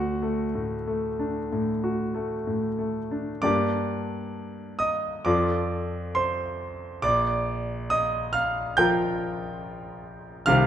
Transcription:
grand piano
Already playing: D2 F#4 F#5
0.22 A3
0.55 A2
0.87 A3
1.19 D4
1.52 A2
1.84 F#4
2.14 A3
2.47 A2
2.79 A3
3.11 D4
3.42 G2 A#3 D4 G4 D5 D6
4.79 D#5 D#6
5.25 F2 F3 F4 A4 D5 D6
6.15 C5 C6
7.02 A#1 D5 D6
7.90 D#5 D#6
8.33 F5 F6
8.77 F3 F4 A#4 G5 G6
10.46 C2 D#3 C4 G4 F5 F6

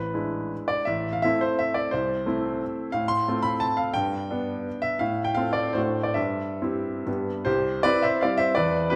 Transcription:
grand piano
Already playing: A1 B4
0.14 G#3 D4 E4
0.68 D5
0.85 A1 E5
1.13 F5
1.22 A3 C4 E4 E5
1.41 C5
1.59 E5
1.74 D5
1.91 C2 C5
2.26 A3 C4 E4
2.92 A2 F5
3.08 C6
3.28 A3 C4 F4
3.43 B5
3.60 A5
3.77 F5
3.94 G2 G5
4.31 B3 D4
4.82 E5
4.99 A2 F5
5.24 G5
5.35 A3 C4 F4 F5
5.53 D5
5.73 A2 A3 D4 F#4 C5
6.03 D5
6.14 G2 E5
6.62 C4 E4 G4
7.06 G2 B3 D4 G4
7.45 C2 G4 C5
7.83 C4 E4 B4 D5
8.02 C5 E5
8.21 G3 C4 E4 D5 F5
8.37 C5 E5
8.55 E2 B4 D5
8.90 C4 E4 G4 B4

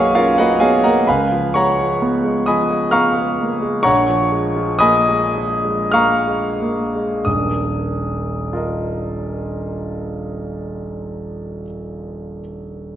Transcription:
grand piano
Already playing: B1 F#3 A#3 C#4 G#4 A#4 B4 C#5 D#5 F5 F#5 G#5 A#5 B5 C#6 D#6
0.15 C#4 F4 A#4 C#5 F5
0.38 A#3 F#4 B4 D#5 F#5
0.60 B3 G#4 C#5 F5 G#5
0.84 A#3 A#4 D#5 F#5 A#5
1.07 C#2 B4 F5 G#5 B5
1.32 F3
1.54 G#3 C#5 F#5 A#5 C#6
1.79 F3
2.02 B3
2.24 G#3
2.46 F3 D#5 G#5 B5 D#6
2.70 G#3
2.91 B3 F5 A#5 C#6 F6
3.17 G#3
3.41 A#3
3.62 G#3
3.83 A#1 C#5 F#5 A#5 C#6
4.09 F3
4.32 G#3
4.56 F3
4.79 A#3 D#5 G#5 B5 D#6
5.09 G#3
5.36 F3
5.65 G#3
5.92 A#3 F5 A#5 C#6 F6
6.27 G#3
6.62 A#3
6.95 G#3
7.25 D#1 A#1 D#6
8.53 F4 A#4 D#5

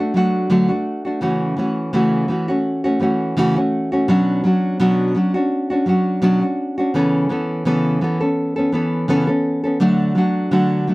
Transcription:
nylon-string guitar
Already playing: F#4
0.00 A3 D4
0.14 F#3 A3 D4 F#4
0.50 D3 F#3 A3 D4 F#4
0.69 A3 D4 F#4
1.05 A3 D4 F#4
1.21 C#3 E3 A3 C#4 F#4
1.57 E3 A3 C#4 F#4
1.93 C#3 E3 A3 C#4 F#4
2.28 E3 A3 C#4 F#4
2.48 A3 C#4 F#4
2.84 A3 C#4 F#4
3.00 E3 A3 C#4 F#4
3.37 C#3 E3 A3 C#4 F#4
3.56 A3 C#4 F#4
3.92 A3 C#4 F#4
4.08 B2 F#3 C#4 D4 F#4
4.44 F#3 C#4 D4 F#4
4.80 B2 F#3 C#4 D4 F#4
5.15 F#3 C#4 D4 F#4
5.34 C#4 D4 F#4
5.70 C#4 D4 F#4
5.86 F#3 C#4 D4 F#4
6.22 B2 F#3 C#4 D4 F#4
6.41 C#4 D4 F#4
6.78 C#4 D4 F#4
6.94 C#3 E3 B3 C#4 A4
7.29 E3 B3 C#4 A4
7.65 C#3 E3 B3 C#4 A4
8.01 E3 B3 C#4 A4
8.21 B3 C#4 A4
8.56 B3 C#4 A4
8.72 E3 B3 C#4 A4
9.08 C#3 E3 B3 C#4 A4
9.27 B3 C#4 A4
9.64 B3 C#4 A4
9.80 D3 F#3 A3 D4 F#4
10.15 F#3 A3 D4 F#4
10.51 D3 F#3 A3 D4 F#4
10.87 F#3 A3 D4 F#4

